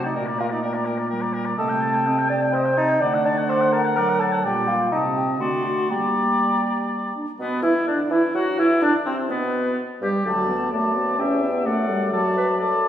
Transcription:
0.00 0.17 C3 medium
0.00 1.11 A3 medium
0.00 0.15 D5 soft
0.00 0.15 F#5 soft
0.05 0.18 D#4 medium
0.15 1.55 A#2 medium
0.15 0.40 D4 medium
0.15 0.28 A#4 medium
0.15 0.30 G5 medium
0.27 0.40 D5 soft
0.27 0.42 A#5 soft
0.39 0.46 F4 medium
0.39 0.51 A#4 soft
0.39 0.53 G5 soft
0.50 0.63 D#4 medium
0.50 0.62 D5 soft
0.50 0.64 A#5 soft
0.62 1.10 D4 medium
0.62 0.75 A#4 soft
0.62 0.77 G5 soft
0.73 0.87 D5 soft
0.73 0.89 A#5 soft
0.85 0.99 A#4 soft
0.85 1.00 G5 soft
0.98 1.09 D5 soft
0.98 1.09 A#5 medium
1.09 1.58 G3 medium
1.09 1.23 A#4 medium
1.09 1.23 G5 medium
1.21 1.35 D5 soft
1.21 1.35 A#5 soft
1.33 1.47 A#4 medium
1.33 1.47 G5 medium
1.45 1.57 D5 soft
1.45 1.57 A#5 soft
1.57 2.97 C3 medium
1.57 2.05 A3 medium
1.57 2.26 A4 medium
1.57 1.70 D#5 medium
1.57 2.75 G5 medium
1.69 1.83 G5 medium
1.81 1.96 A5 medium
1.94 2.08 G5 soft
2.07 2.72 C4 medium
2.07 2.20 D#5 medium
2.18 2.31 G5 medium
2.29 2.55 D4 medium
2.29 2.43 A5 soft
2.42 2.55 G5 medium
2.53 2.77 C5 medium
2.53 2.67 D#5 medium
2.65 2.79 G5 soft
2.77 3.02 D#4 loud
2.77 2.91 A5 medium
2.89 3.00 G5 soft
3.01 4.28 D3 medium
3.01 3.92 A3 medium
3.01 3.24 D4 medium
3.01 3.15 D5 medium
3.01 4.41 F#5 medium
3.14 3.27 F#5 medium
3.25 3.36 D4 medium
3.25 3.39 A5 medium
3.37 3.52 F#5 medium
3.49 3.72 C5 medium
3.49 3.63 D5 medium
3.61 3.74 F#5 medium
3.72 3.95 A#4 medium
3.72 3.86 A5 medium
3.85 3.99 F#5 medium
3.96 4.46 F#3 medium
3.96 4.21 A#4 loud
3.96 4.11 D5 medium
4.09 4.22 F#5 soft
4.20 4.46 A4 medium
4.20 4.34 A5 medium
4.33 4.44 F#5 medium
4.44 4.93 A#2 medium
4.44 4.92 G3 medium
4.44 4.69 G4 medium
4.44 4.80 D5 medium
4.44 4.88 G5 medium
4.68 4.91 F4 medium
4.92 5.42 C3 medium
4.92 5.42 C4 medium
4.92 5.02 D#4 medium
4.92 5.40 D#5 medium
4.92 5.42 A5 medium
5.16 5.40 G4 medium
5.40 5.90 D3 medium
5.40 5.92 A3 medium
5.40 5.64 F#4 medium
5.40 5.89 D5 medium
5.40 5.92 C6 medium
5.65 5.89 F#4 medium
5.90 7.13 G3 medium
5.90 7.15 A#3 soft
5.90 6.88 G4 medium
5.90 7.13 D5 medium
5.90 7.15 A#5 medium
7.15 7.26 D4 medium
7.39 7.61 B2 medium
7.39 7.50 B3 medium
7.39 7.62 B3 medium
7.39 7.65 B4 medium
7.62 7.74 E3 medium
7.62 7.86 E4 medium
7.62 7.73 E4 medium
7.62 7.87 E4 medium
7.62 7.74 E4 medium
7.86 8.10 D3 medium
7.86 8.10 D4 medium
7.86 7.98 D4 soft
7.86 8.13 D4 medium
7.86 7.98 D4 medium
8.10 8.21 E3 medium
8.10 8.36 E4 medium
8.10 8.34 E4 medium
8.10 8.22 E4 medium
8.10 8.23 E4 medium
8.35 8.60 F#3 medium
8.35 8.58 F#4 medium
8.35 8.61 F#4 medium
8.35 8.46 F#4 medium
8.35 8.59 F#4 medium
8.58 8.81 E3 medium
8.58 8.81 E4 medium
8.58 8.82 E4 medium
8.58 8.84 E4 medium
8.58 8.70 E4 medium
8.82 8.93 D3 medium
8.82 8.93 D4 medium
8.82 9.08 D4 medium
8.82 8.93 D4 medium
8.82 8.94 D4 medium
9.05 9.31 C3 medium
9.05 9.16 C4 medium
9.05 9.30 C4 medium
9.05 9.32 C4 medium
9.05 9.30 C4 medium
9.29 9.77 B2 medium
9.29 9.77 B3 medium
9.29 9.78 B3 medium
9.29 9.78 B4 medium
10.01 10.12 G2 medium
10.01 10.26 G3 medium
10.01 10.24 G3 medium
10.01 10.24 G4 medium
10.01 10.08 G4 medium
10.25 10.69 D2 medium
10.25 10.48 F#3 medium
10.25 10.74 A4 medium
10.25 10.69 D5 medium
10.25 10.69 A5 medium
10.48 10.74 B3 medium
10.72 11.20 F#2 medium
10.72 10.97 A3 medium
10.72 11.20 F#4 medium
10.72 11.21 D5 medium
10.72 11.21 A5 medium
10.96 11.18 B3 medium
11.18 11.65 E2 medium
11.18 11.44 C#4 medium
11.18 11.65 G4 medium
11.18 11.67 E5 medium
11.18 11.67 G5 medium
11.42 11.67 B3 medium
11.65 12.88 F#2 medium
11.65 11.91 A3 medium
11.65 12.11 A4 medium
11.65 12.12 D5 medium
11.65 12.13 F#5 medium
11.89 12.12 G3 medium
12.12 12.58 F#3 medium
12.12 12.23 A4 medium
12.12 12.59 D5 medium
12.12 12.59 A5 medium
12.37 12.47 B4 medium
12.59 12.88 A4 medium
12.59 12.88 D5 medium
12.59 12.88 A5 medium

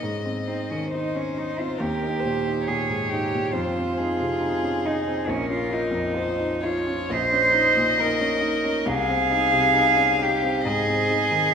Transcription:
0.00 1.77 G#2 medium
0.00 0.91 D#5 medium
0.25 0.61 C4 soft
0.47 0.72 C4 medium
0.47 0.84 D#4 soft
0.71 1.07 D#3 soft
0.71 0.92 C#4 medium
0.92 1.18 D#4 medium
0.92 1.29 D#4 soft
0.92 1.79 C5 medium
1.15 1.37 C#4 soft
1.15 1.40 C#4 medium
1.37 1.72 D#4 soft
1.37 1.61 D#4 medium
1.60 1.81 C4 soft
1.60 1.82 F4 medium
1.78 3.50 D#2 medium
1.78 2.69 G4 medium
1.78 2.21 A#4 medium
2.03 2.37 D#4 soft
2.20 2.64 C5 medium
2.25 2.59 A#2 soft
2.47 2.81 D#4 soft
2.65 3.02 A#2 soft
2.65 3.12 G#4 medium
2.65 3.54 C#5 medium
2.89 3.11 G#2 soft
3.10 3.46 D#4 medium
3.10 3.53 G4 medium
3.34 3.55 A#2 soft
3.53 5.24 F2 medium
3.53 4.87 F4 medium
3.53 3.99 C5 medium
3.77 4.11 C4 soft
3.97 4.33 D#4 soft
3.97 5.31 G#4 medium
4.20 4.55 C3 soft
4.41 4.76 D#4 medium
4.63 4.85 C#4 soft
4.85 5.20 D#4 medium
4.85 5.29 D#4 medium
5.07 5.28 C4 soft
5.27 7.06 A#1 medium
5.27 5.50 C#4 medium
5.27 6.16 A#4 medium
5.48 5.84 C#4 soft
5.48 5.75 F4 medium
5.69 6.65 D#4 medium
5.69 6.06 F4 soft
5.91 6.29 F2 soft
6.14 6.53 F4 medium
6.14 6.63 C5 medium
6.39 6.63 D#4 soft
6.63 7.01 F4 medium
6.63 7.14 F4 medium
6.63 7.13 C#5 medium
6.87 7.11 C#4 soft
7.09 8.83 A#1 medium
7.09 8.01 C5 loud
7.09 8.88 D#5 medium
7.32 7.68 C#4 soft
7.52 7.89 D#4 medium
7.77 8.12 A#2 soft
7.98 8.34 D#4 medium
7.98 8.89 A#4 medium
8.21 8.43 C#4 soft
8.41 8.78 D#4 medium
8.64 8.87 C#4 soft
8.86 10.62 C2 medium
8.86 10.23 G#4 loud
8.86 10.64 F5 medium
9.08 9.44 C4 medium
9.31 9.67 D#4 medium
9.52 9.89 C3 soft
9.74 10.11 D#4 medium
9.96 10.20 C#4 soft
10.19 10.57 D#4 medium
10.19 10.66 G4 medium
10.42 10.66 C4 medium
10.65 11.54 G#2 medium
10.65 11.54 G#4 loud
10.65 11.54 D#5 medium
10.87 11.24 C4 medium
11.10 11.47 D#4 medium
11.31 11.54 D#3 medium

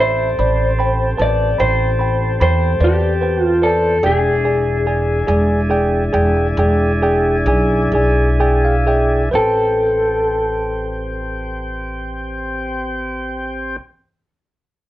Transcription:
0.00 0.35 A1 medium
0.00 3.98 C4 medium
0.00 3.98 G4 medium
0.00 3.99 A4 medium
0.00 0.29 C5 soft
0.00 1.21 C5 medium
0.00 0.29 E5 medium
0.00 0.28 B5 medium
0.38 1.15 A1 medium
0.38 0.69 C5 soft
0.38 0.69 D5 medium
0.38 0.69 B5 soft
0.79 1.09 C5 soft
0.79 1.10 G5 medium
0.79 1.09 B5 medium
1.18 1.56 A1 medium
1.18 1.49 B4 soft
1.18 1.49 C5 soft
1.18 1.49 A5 medium
1.22 1.60 D5 medium
1.58 2.37 A1 medium
1.58 1.90 C5 soft
1.58 2.37 C5 medium
1.58 1.90 G5 medium
1.58 1.89 B5 soft
1.99 2.30 C5 soft
1.99 2.31 G5 medium
1.99 2.30 B5 soft
2.40 2.78 E2 loud
2.40 2.71 C5 soft
2.40 2.79 C5 medium
2.40 2.71 G5 medium
2.40 2.71 B5 soft
2.80 3.99 E2 medium
2.80 3.44 G4 medium
2.80 3.11 B4 medium
2.80 3.11 C5 soft
2.80 3.11 D5 medium
3.21 3.52 B4 medium
3.21 3.52 C5 soft
3.21 3.53 G5 medium
3.44 3.66 F4 medium
3.62 4.05 A4 medium
3.62 3.93 B4 soft
3.62 3.93 C5 soft
3.62 3.94 D5 medium
4.03 5.24 E1 medium
4.03 9.29 D4 medium
4.03 9.30 E4 medium
4.03 4.34 G#4 medium
4.03 9.29 G#4 medium
4.03 8.35 G#4 medium
4.03 4.34 D5 medium
4.03 4.35 G5 medium
4.45 4.76 G#4 soft
4.45 4.76 D5 soft
4.45 4.76 G#5 medium
4.87 5.18 G#4 medium
4.87 5.18 D5 soft
4.87 5.18 G#5 medium
5.27 6.10 E1 medium
5.27 5.60 G#4 medium
5.27 5.60 D5 medium
5.27 5.60 G#5 medium
5.70 6.03 G#4 medium
5.70 6.03 D5 medium
5.70 6.03 G5 medium
6.13 6.54 E1 medium
6.13 6.46 G#4 medium
6.13 6.46 D5 medium
6.13 6.47 G5 medium
6.57 7.42 E1 medium
6.57 6.91 G#4 medium
6.57 6.92 D5 medium
6.57 6.91 G5 medium
7.02 7.36 G#4 medium
7.02 7.36 D5 medium
7.02 7.36 G5 medium
7.46 7.88 B1 medium
7.46 7.81 G#4 medium
7.46 7.81 D5 medium
7.46 7.81 G#5 medium
7.92 9.29 B1 medium
7.92 8.27 G#4 medium
7.92 8.28 D5 medium
7.92 8.28 G#5 medium
8.40 8.74 G#4 medium
8.40 8.74 D5 medium
8.40 8.74 G5 medium
8.40 8.61 G#5 medium
8.65 8.85 F5 soft
8.86 9.21 G#4 medium
8.86 9.22 D5 soft
8.86 9.30 E5 soft
8.86 9.22 G5 medium
9.31 13.77 A1 medium
9.31 13.76 C4 medium
9.31 13.76 G4 medium
9.31 13.78 A4 medium
9.31 13.74 B4 medium
9.31 13.77 C5 medium
9.31 13.78 G5 medium

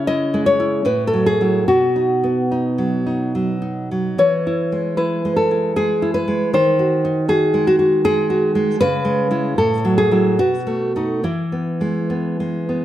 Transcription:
0.00 0.81 C#3 medium
0.00 0.85 C#4 soft
0.07 0.59 E4 soft
0.07 0.44 D#5 medium
0.34 0.84 G#3 soft
0.46 0.84 C#5 medium
0.60 0.85 E4 soft
0.85 1.65 A2 soft
0.85 1.05 B4 medium
1.07 1.27 A4 medium
1.14 1.40 F#3 soft
1.26 1.66 G#4 medium
1.41 1.65 F#3 soft
1.41 1.66 E4 soft
1.68 4.15 B2 soft
1.68 3.31 F#4 medium
1.96 2.50 D#4 soft
2.24 3.49 B3 soft
2.51 3.05 D#4 soft
2.78 3.34 F#3 soft
3.07 3.61 D#4 soft
3.35 3.90 F#3 soft
3.62 4.18 D#4 soft
3.91 4.19 F#3 soft
4.18 6.50 E3 soft
4.18 4.96 C#5 medium
4.47 4.96 E4 soft
4.72 5.24 G#3 soft
4.97 5.50 E4 soft
4.97 5.36 B4 medium
5.25 5.75 G#3 soft
5.36 5.75 A4 medium
5.51 6.01 E4 soft
5.76 6.27 G#3 soft
5.76 6.14 G#4 medium
6.02 6.54 E4 soft
6.14 6.52 B4 medium
6.28 6.54 G#3 soft
6.53 8.76 D#3 soft
6.53 7.26 C5 medium
6.79 7.27 F#4 soft
7.05 8.16 D#4 soft
7.28 7.66 F#4 soft
7.28 7.65 G#4 medium
7.54 8.03 G#3 soft
7.67 7.78 F#4 medium
7.79 8.29 F#4 soft
8.05 8.54 G#3 soft
8.05 8.78 G#4 medium
8.30 8.81 F#4 soft
8.55 8.81 G#3 soft
8.81 9.57 C#3 medium
8.81 9.56 B4 medium
9.05 9.29 G#3 soft
9.31 9.55 G#3 soft
9.31 9.56 E4 soft
9.58 10.37 A2 medium
9.58 9.97 A4 medium
9.85 10.10 F#3 soft
9.98 10.38 G#4 medium
10.11 10.37 F#3 soft
10.11 10.37 E4 soft
10.39 11.22 B2 soft
10.39 11.21 F#4 medium
10.67 10.95 A3 soft
10.96 11.22 A3 soft
10.96 11.23 D#4 soft
11.24 12.85 E3 soft
11.24 12.85 E4 medium
11.52 12.09 B3 soft
11.81 12.39 G#3 soft
12.10 12.68 B3 soft
12.40 12.85 G#3 soft
12.69 12.85 B3 soft

